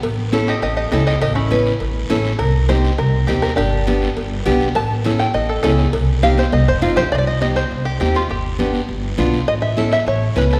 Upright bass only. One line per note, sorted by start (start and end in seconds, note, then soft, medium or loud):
0.03 0.51 A1 medium
0.62 0.86 A1 loud
0.92 1.16 C#2 loud
1.22 1.69 A1 loud
1.81 2.04 A1 loud
2.10 2.34 A1 medium
2.40 2.87 C2 medium
2.99 3.23 C2 loud
3.29 3.52 D#2 medium
3.58 4.05 G1 medium
4.17 4.41 G1 loud
4.46 4.70 B1 medium
4.76 5.23 A1 loud
5.34 5.58 A1 medium
5.64 5.88 C#2 loud
5.94 6.41 C2 loud
6.52 6.64 C2 loud
6.67 6.81 F1 medium
6.82 6.96 G1 medium
6.97 7.10 B1 medium
7.12 7.59 C2 medium
7.71 7.94 C2 loud
8.01 8.24 D#2 medium
8.30 8.77 G1 medium
8.89 9.12 G1 medium
9.18 9.42 B1 loud
9.47 9.95 A1 loud
10.06 10.30 A1 loud
10.36 10.59 C#2 medium